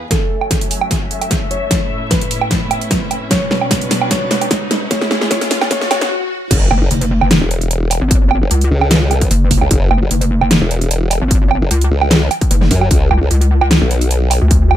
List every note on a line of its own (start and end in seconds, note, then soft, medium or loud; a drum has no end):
0.00 0.10 E2 medium
0.00 0.10 E3 medium
0.00 0.10 B3 medium
0.00 0.10 B4 medium
0.11 1.69 F#2 medium
0.11 1.69 F#3 medium
0.11 3.28 A3 medium
0.11 0.63 A4 loud
0.11 3.28 E5 medium
0.11 1.69 G#5 medium
0.11 kick medium
0.11 snare soft
0.11 closed hi-hat medium
0.11 riser medium
0.41 low woodblock medium
0.51 kick medium
0.51 snare soft
0.51 closed hi-hat medium
0.61 closed hi-hat medium
0.71 open hi-hat medium
0.81 low woodblock medium
0.91 kick medium
0.91 snare soft
0.91 closed hi-hat medium
1.11 closed hi-hat medium
1.21 closed hi-hat soft
1.21 low woodblock soft
1.31 kick medium
1.31 snare medium
1.31 closed hi-hat medium
1.51 2.03 C#5 medium
1.51 closed hi-hat medium
1.71 3.29 A2 medium
1.71 4.88 C#4 medium
1.71 3.29 E4 medium
1.71 kick medium
1.71 snare medium
1.71 closed hi-hat medium
2.11 3.23 B4 medium
2.11 kick loud
2.11 snare medium
2.11 closed hi-hat medium
2.21 closed hi-hat medium
2.31 open hi-hat medium
2.41 low woodblock medium
2.51 kick medium
2.51 snare medium
2.51 closed hi-hat medium
2.71 closed hi-hat medium
2.71 low woodblock medium
2.81 closed hi-hat medium
2.91 kick loud
2.91 snare medium
2.91 closed hi-hat medium
3.11 closed hi-hat medium
3.11 low woodblock soft
3.31 4.89 B2 medium
3.31 4.89 F#3 medium
3.31 4.89 D4 medium
3.31 4.89 B4 medium
3.31 3.83 C#5 medium
3.31 kick medium
3.31 snare medium
3.31 closed hi-hat medium
3.51 snare medium
3.61 low woodblock medium
3.71 kick loud
3.71 snare medium
3.71 closed hi-hat medium
3.81 closed hi-hat soft
3.91 snare medium
3.91 open hi-hat medium
4.01 low woodblock medium
4.11 4.63 C#5 medium
4.11 kick loud
4.11 snare medium
4.11 closed hi-hat medium
4.31 snare medium
4.31 closed hi-hat medium
4.41 closed hi-hat medium
4.41 low woodblock soft
4.51 kick medium
4.51 snare medium
4.51 closed hi-hat medium
4.71 snare medium
4.71 closed hi-hat medium
4.91 6.10 C#2 medium
4.91 6.10 C#3 medium
4.91 6.10 G#3 medium
4.91 6.10 F4 medium
4.91 6.10 G#4 loud
4.91 5.29 C#5 medium
4.91 kick loud
4.91 snare medium
4.91 closed hi-hat medium
5.01 snare medium
5.11 snare medium
5.21 snare medium
5.31 5.69 C#5 loud
5.31 kick loud
5.31 snare medium
5.31 closed hi-hat medium
5.41 snare medium
5.41 closed hi-hat medium
5.51 snare medium
5.51 open hi-hat medium
5.61 snare medium
5.61 low woodblock medium
5.71 5.89 C#5 loud
5.71 kick loud
5.71 snare loud
5.71 closed hi-hat medium
5.71 swell medium
5.81 snare medium
5.91 6.09 C#5 loud
5.91 snare loud
5.91 closed hi-hat medium
5.91 low woodblock medium
6.01 snare medium
6.01 closed hi-hat soft
6.51 6.69 F#1 medium
6.51 kick loud
6.51 closed hi-hat medium
6.51 crash loud
6.51 impact medium
6.71 6.80 F#1 loud
6.71 low woodblock medium
6.81 6.89 F#1 medium
6.91 7.20 F#1 medium
6.91 closed hi-hat medium
7.01 closed hi-hat medium
7.21 7.40 F#1 medium
7.21 low woodblock medium
7.31 snare loud
7.31 closed hi-hat medium
7.41 8.00 E1 loud
7.51 closed hi-hat medium
7.61 closed hi-hat medium
7.71 closed hi-hat medium
7.91 open hi-hat loud
7.91 low woodblock soft
8.01 8.40 G#1 loud
8.11 kick loud
8.11 closed hi-hat medium
8.31 low woodblock medium
8.42 8.49 F#1 medium
8.51 8.69 C#2 medium
8.51 closed hi-hat medium
8.61 closed hi-hat medium
8.71 9.12 C#2 loud
8.81 low woodblock medium
8.91 snare loud
8.91 closed hi-hat medium
9.11 9.29 C2 loud
9.11 closed hi-hat medium
9.11 low woodblock medium
9.21 kick loud
9.21 closed hi-hat medium
9.31 9.60 F#1 medium
9.31 closed hi-hat medium
9.51 kick medium
9.51 open hi-hat loud
9.61 9.69 C#2 loud
9.61 low woodblock medium
9.71 9.89 F#1 loud
9.71 kick loud
9.71 closed hi-hat medium
9.91 10.00 F#1 loud
9.91 low woodblock medium
10.01 10.09 F#1 medium
10.11 10.40 F#1 medium
10.11 closed hi-hat medium
10.21 closed hi-hat medium
10.41 10.60 F#1 medium
10.41 low woodblock medium
10.51 snare loud
10.51 closed hi-hat medium
10.61 11.20 E1 loud
10.71 closed hi-hat medium
10.81 closed hi-hat medium
10.91 closed hi-hat medium
11.11 open hi-hat medium
11.11 low woodblock medium
11.21 11.60 G#1 loud
11.31 kick loud
11.31 closed hi-hat medium
11.51 low woodblock medium
11.62 11.69 F#1 medium
11.71 11.89 C#2 medium
11.71 closed hi-hat medium
11.81 closed hi-hat medium
11.91 12.29 C#2 loud
12.01 low woodblock medium
12.11 snare loud
12.11 closed hi-hat medium
12.31 closed hi-hat medium
12.31 low woodblock medium
12.41 kick loud
12.41 closed hi-hat medium
12.51 12.69 F#1 loud
12.51 closed hi-hat medium
12.62 snare soft
12.71 12.89 F#2 loud
12.71 kick medium
12.71 open hi-hat medium
12.81 low woodblock medium
12.91 13.09 C#2 loud
12.91 kick loud
12.91 closed hi-hat medium
13.11 13.20 C#2 loud
13.11 low woodblock medium
13.21 13.29 C#2 medium
13.31 13.60 C#2 medium
13.31 closed hi-hat medium
13.41 closed hi-hat medium
13.61 13.80 C#2 medium
13.61 low woodblock medium
13.71 snare loud
13.71 closed hi-hat medium
13.81 14.40 B1 loud
13.91 closed hi-hat soft
14.01 closed hi-hat medium
14.11 closed hi-hat medium
14.31 open hi-hat medium
14.31 low woodblock medium
14.42 14.77 D2 loud
14.51 kick loud
14.51 closed hi-hat medium
14.71 low woodblock medium